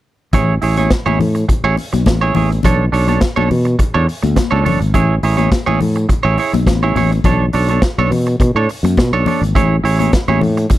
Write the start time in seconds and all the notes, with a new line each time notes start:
0.33 A1 E4 G#4 C#5, kick, closed hi-hat, low conga
0.62 A1 E4 G#4 C#5, open hi-hat, muted conga
0.77 E4 G#4 C#5, closed hi-hat, high conga
0.90 muted clean electric guitar stroke, kick, snare, closed hi-hat, muted conga
1.06 A1 E4 G#4 C#5, high conga
1.19 A2, open hi-hat, muted conga, low conga
1.35 muted clean electric guitar stroke, closed hi-hat
1.49 muted clean electric guitar stroke, kick, closed hi-hat
1.64 A1 E4 G#4 C#5
1.76 muted clean electric guitar stroke, open hi-hat, muted conga
1.93 B1, muted clean electric guitar stroke, closed hi-hat, high conga
2.06 A1, muted clean electric guitar stroke, kick, snare, closed hi-hat, muted conga, high conga
2.21 E4 G#4 C#5
2.35 A1 E4 G#4 C#5, open hi-hat, muted conga, high conga, low conga
2.52 closed hi-hat
2.63 B1 D4 A4 C#5, kick, closed hi-hat, muted conga, low conga
2.92 B1 D4 A4 C#5, open hi-hat
3.08 D4 A4 C#5, closed hi-hat, high conga
3.21 muted clean electric guitar stroke, kick, snare, closed hi-hat
3.36 B1 D4 A4 C#5, high conga
3.51 B2, open hi-hat, muted conga, low conga
3.65 muted clean electric guitar stroke, closed hi-hat
3.79 muted clean electric guitar stroke, kick, closed hi-hat
3.94 E2 D4 A4 C#5
4.07 muted clean electric guitar stroke, open hi-hat
4.23 D2, muted clean electric guitar stroke, closed hi-hat, high conga
4.36 muted clean electric guitar stroke, kick, snare, closed hi-hat, muted conga, high conga
4.51 C#2 D4 A4 C#5
4.64 F#1 D4 A4 C#5, open hi-hat, muted conga, high conga, low conga
4.81 G#1, muted clean electric guitar stroke, closed hi-hat
4.94 A1 E4 G#4 C#5, kick, closed hi-hat, muted conga, low conga
5.23 A1 E4 G#4 C#5, open hi-hat, muted conga
5.37 E4 G#4 C#5, closed hi-hat, high conga
5.51 muted clean electric guitar stroke, kick, snare, closed hi-hat
5.66 A1 E4 G#4 C#5, high conga
5.80 A2, muted clean electric guitar stroke, open hi-hat, muted conga, low conga
5.95 muted clean electric guitar stroke, closed hi-hat
6.09 muted clean electric guitar stroke, kick, closed hi-hat, muted conga
6.23 A1 E4 G#4 C#5
6.38 E4 G#4 C#5, open hi-hat, muted conga
6.53 B1, muted clean electric guitar stroke, closed hi-hat, high conga
6.67 A1, muted clean electric guitar stroke, kick, snare, closed hi-hat, muted conga, high conga
6.83 E4 G#4 C#5
6.95 A1 E4 G#4 C#5, open hi-hat, high conga, low conga
7.12 muted clean electric guitar stroke, closed hi-hat
7.24 B1 D4 A4 C#5, kick, closed hi-hat, muted conga, low conga
7.53 B1 D4 A4 C#5, open hi-hat, muted conga
7.68 D4 A4 C#5, closed hi-hat, high conga
7.82 muted clean electric guitar stroke, kick, snare, closed hi-hat, muted conga
7.98 B1 D4 A4 C#5, high conga
8.11 B2, muted clean electric guitar stroke, open hi-hat, muted conga, low conga
8.26 muted clean electric guitar stroke, closed hi-hat
8.40 B2, muted clean electric guitar stroke, kick, closed hi-hat
8.55 A2 D4 A4 C#5
8.69 muted clean electric guitar stroke, open hi-hat
8.83 F#2, muted clean electric guitar stroke, closed hi-hat, high conga
8.97 B2, muted clean electric guitar stroke, kick, snare, closed hi-hat, high conga
9.12 B1 D4 A4 C#5
9.26 D4 A4 C#5, open hi-hat, muted conga, high conga, low conga
9.41 G#1, muted clean electric guitar stroke, closed hi-hat
9.55 A1 E4 G#4 C#5, kick, closed hi-hat, low conga
9.84 A1 E4 G#4 C#5, open hi-hat
9.99 E4 G#4 C#5, closed hi-hat, high conga
10.13 kick, snare, closed hi-hat, muted conga
10.28 A1 E4 G#4 C#5, high conga
10.41 A2, muted clean electric guitar stroke, open hi-hat, low conga
10.57 muted clean electric guitar stroke, closed hi-hat
10.70 muted clean electric guitar stroke, kick, closed hi-hat, muted conga